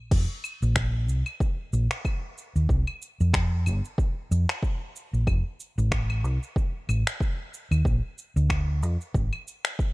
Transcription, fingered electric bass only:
0.12 0.25 F1 medium
0.62 1.09 A#1 loud
1.09 1.22 C2 medium
1.73 1.86 A#1 medium
2.56 2.66 D#2 medium
2.69 2.83 C2 loud
3.20 3.68 F2 medium
3.67 3.80 G1 loud
4.31 4.44 F2 medium
5.13 5.24 A#1 medium
5.27 5.41 F1 loud
5.78 6.24 A1 loud
6.24 6.37 C2 medium
6.89 7.02 A1 loud
7.71 7.82 D#2 medium
7.85 7.99 A#1 loud
8.36 8.83 D2 loud
8.83 8.96 F2 medium
9.15 9.28 G#1 medium

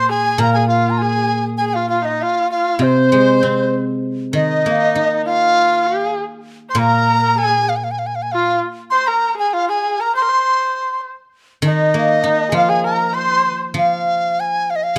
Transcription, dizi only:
0.10 0.41 G#5 medium
0.39 0.53 A#5 medium
0.54 0.68 G#5 medium
0.69 0.92 F5 medium
0.90 0.99 A#5 medium
0.98 1.44 G#5 medium
1.57 1.68 G#5 medium
1.69 1.75 G#5 medium
1.74 1.89 F5 medium
1.89 2.07 F5 medium
2.05 2.23 D#5 medium
2.22 2.51 F5 medium
2.51 2.84 F5 medium
2.82 3.74 C5 medium
4.35 5.22 D#5 medium
5.26 6.12 F5 loud
6.70 6.80 C6 medium
6.79 7.40 A#5 loud
7.38 7.70 G#5 medium
7.69 7.78 F5 medium
7.76 7.85 G#5 medium
7.84 7.93 F5 medium
7.91 8.00 G#5 medium
7.99 8.08 F5 medium
8.07 8.17 G#5 medium
8.15 8.24 F5 medium
8.22 8.33 G#5 medium
8.32 8.60 F5 medium
8.90 9.08 C6 medium
9.07 9.37 A#5 medium
9.39 9.50 G#5 medium
9.50 9.68 F5 medium
9.50 9.55 G#5 medium
9.69 10.03 G#5 medium
10.01 10.15 A#5 medium
10.16 11.01 C6 medium
11.67 12.56 D#5 medium
12.54 12.71 F5 medium
12.70 12.84 G#5 medium
12.85 13.16 A#5 medium
13.15 13.61 C6 medium
13.78 14.42 F5 medium
14.40 14.72 G#5 medium
14.70 14.77 F5 medium
14.76 14.85 D#5 medium
14.83 14.99 F5 medium

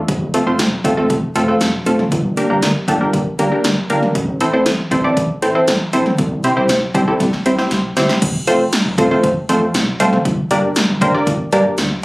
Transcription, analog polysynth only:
0.34 0.43 A3 medium
0.34 0.43 C4 medium
0.34 0.43 F4 medium
0.34 0.43 A4 medium
0.47 0.64 A3 medium
0.47 0.64 C4 medium
0.47 0.64 F4 medium
0.47 0.64 C5 medium
0.85 0.94 A3 medium
0.85 0.94 C4 medium
0.85 0.94 F4 medium
0.85 0.94 A4 loud
0.97 1.15 A3 medium
0.97 1.15 C4 medium
0.97 1.15 F4 medium
0.97 1.15 A4 medium
1.35 1.44 A3 medium
1.35 1.44 C4 medium
1.35 1.44 F4 medium
1.35 1.44 A4 loud
1.48 1.66 A3 medium
1.48 1.66 C4 medium
1.48 1.66 F4 medium
1.48 1.66 A4 medium
1.86 2.04 A3 medium
1.86 2.04 C4 medium
1.86 2.04 F4 medium
1.86 2.04 A4 loud
2.37 2.46 A#3 medium
2.37 2.46 D4 medium
2.37 2.46 G4 medium
2.37 2.46 A#4 medium
2.50 2.68 A#3 medium
2.50 2.68 D4 medium
2.50 2.68 G4 medium
2.50 2.68 A#4 medium
2.88 2.97 A#3 medium
2.88 2.97 D4 medium
2.88 2.97 G4 medium
2.88 2.97 A4 loud
3.01 3.18 A#3 medium
3.01 3.18 D4 medium
3.01 3.18 G4 medium
3.01 3.18 A#4 medium
3.39 3.48 A#3 medium
3.39 3.48 D4 medium
3.39 3.48 G4 medium
3.39 3.48 A#4 medium
3.52 3.69 A#3 medium
3.52 3.69 D4 medium
3.52 3.69 G4 medium
3.52 3.69 A#4 medium
3.90 4.07 A#3 medium
3.90 4.07 D4 medium
3.90 4.07 G4 medium
3.90 4.07 A#4 loud
4.41 4.50 C4 medium
4.41 4.50 E4 medium
4.41 4.49 A4 medium
4.41 4.50 C5 medium
4.53 4.71 C4 medium
4.53 4.71 E4 medium
4.53 4.71 A4 medium
4.53 4.71 C5 medium
4.91 5.00 C4 medium
4.91 5.00 E4 medium
4.91 5.00 A4 medium
4.91 5.00 C5 loud
5.04 5.22 C4 medium
5.04 5.22 E4 medium
5.04 5.22 A4 medium
5.04 5.22 D5 medium
5.42 5.51 C4 medium
5.42 5.51 E4 medium
5.42 5.51 A4 medium
5.42 5.51 C5 loud
5.55 5.73 C4 medium
5.55 5.73 E4 medium
5.55 5.73 A4 medium
5.55 5.73 C5 medium
5.93 6.11 C4 medium
5.93 6.11 E4 medium
5.93 6.11 A4 medium
5.93 6.11 C5 loud
6.44 6.53 C4 medium
6.44 6.53 E4 medium
6.44 6.53 G4 medium
6.44 6.53 C5 medium
6.57 6.74 C4 medium
6.57 6.74 E4 medium
6.57 6.74 G4 medium
6.57 6.74 C5 medium
6.95 7.04 C4 medium
6.95 7.04 E4 medium
6.95 7.04 G4 medium
6.95 7.04 C5 loud
7.08 7.25 C4 medium
7.08 7.25 E4 medium
7.08 7.25 G4 medium
7.08 7.25 A4 medium
7.46 7.55 C4 medium
7.46 7.55 E4 medium
7.46 7.55 G4 medium
7.46 7.55 C5 medium
7.58 7.76 C4 medium
7.58 7.76 E4 medium
7.58 7.76 G4 medium
7.58 7.76 C5 medium
7.97 8.14 C4 medium
7.97 8.14 E4 medium
7.97 8.14 G4 medium
7.97 8.14 C5 loud
8.47 8.65 A3 medium
8.47 8.65 C4 medium
8.47 8.65 F4 medium
8.47 8.65 A4 medium
8.47 8.65 C5 loud
8.98 9.07 A3 medium
8.98 9.07 C4 medium
8.98 9.07 F4 medium
8.98 9.07 A4 medium
8.98 9.07 C5 loud
9.11 9.29 A3 medium
9.11 9.29 C4 medium
9.11 9.29 F4 medium
9.11 9.29 A4 medium
9.11 9.29 C5 medium
9.49 9.67 A3 medium
9.49 9.67 C4 medium
9.49 9.67 F4 medium
9.49 9.67 A4 medium
9.49 9.67 C5 loud
10.00 10.18 A3 loud
10.00 10.18 C4 medium
10.00 10.18 F4 medium
10.00 10.18 A4 medium
10.00 10.18 C5 loud
10.51 10.68 A#3 medium
10.51 10.68 D4 medium
10.51 10.68 G4 medium
10.51 10.68 A#4 medium
10.51 10.68 D5 loud
11.02 11.11 A#3 medium
11.02 11.11 D4 medium
11.02 11.11 G4 medium
11.02 11.10 A#4 medium
11.02 11.10 C5 loud
11.14 11.32 A#3 medium
11.14 11.32 D4 medium
11.14 11.32 G4 medium
11.14 11.32 A#4 medium
11.14 11.32 D5 medium
11.53 11.70 A#3 medium
11.53 11.70 D4 medium
11.53 11.70 G4 medium
11.53 11.70 A#4 medium
11.53 11.70 D5 loud

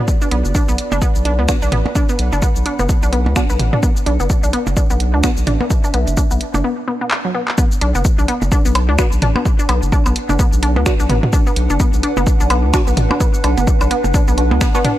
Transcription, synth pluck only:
0.22 0.28 D4 medium
0.31 0.37 B3 medium
0.55 0.63 D4 medium
0.68 0.72 B3 medium
0.92 0.98 D4 medium
1.02 1.07 B3 medium
1.25 1.33 D4 medium
1.39 1.43 B3 medium
1.62 1.68 D4 medium
1.72 1.77 B3 medium
1.95 2.04 D4 medium
2.09 2.13 B3 medium
2.32 2.38 D4 medium
2.42 2.48 B3 medium
2.66 2.74 D4 medium
2.79 2.83 B3 medium
3.03 3.09 D4 medium
3.13 3.18 B3 medium
3.36 3.44 D4 medium
3.50 3.54 B3 medium
3.73 3.79 D4 medium
3.83 3.88 B3 medium
4.06 4.15 D4 medium
4.20 4.24 B3 medium
4.43 4.49 D4 medium
4.53 4.59 B3 medium
4.77 4.85 D4 medium
4.90 4.94 B3 medium
5.14 5.20 D4 medium
5.24 5.29 B3 medium
5.47 5.55 D4 medium
5.61 5.65 B3 medium
5.84 5.90 D4 medium
5.94 5.99 B3 medium
6.17 6.26 D4 medium
6.31 6.35 B3 medium
6.54 6.60 D4 medium
6.64 6.70 B3 medium
6.88 6.91 B3 medium
7.01 7.05 B3 medium
7.25 7.29 F#3 medium
7.35 7.38 B3 medium
7.58 7.63 B3 medium
7.81 7.90 D4 medium
7.95 7.99 B3 medium
8.18 8.24 D4 medium
8.28 8.34 B3 medium
8.52 8.60 D4 medium
8.65 8.69 B3 medium
8.89 8.95 D4 medium
8.99 9.04 B3 medium
9.22 9.30 D4 medium
9.36 9.40 B3 medium
9.59 9.65 D4 medium
9.69 9.74 B3 medium
9.92 10.01 D4 medium
10.06 10.10 B3 medium
10.29 10.35 D4 medium
10.39 10.45 B3 medium
10.63 10.71 D4 medium
10.76 10.80 B3 medium
11.00 11.06 D4 medium
11.10 11.15 B3 medium
11.33 11.41 D4 medium
11.47 11.51 B3 medium
11.70 11.76 D4 medium
11.80 11.85 B3 medium
12.03 12.11 D4 medium
12.17 12.21 B3 medium
12.40 12.46 D4 medium
12.50 12.56 B3 medium
12.74 12.82 D4 medium
12.87 12.91 B3 medium
13.11 13.17 D4 medium
13.20 13.26 B3 medium
13.44 13.52 D4 medium
13.58 13.61 B3 medium
13.81 13.87 D4 medium
13.91 13.96 B3 medium
14.14 14.22 D4 medium
14.28 14.32 B3 medium
14.51 14.57 B3 medium
14.61 14.67 B3 medium
14.75 14.79 B3 loud
14.85 14.90 D4 medium

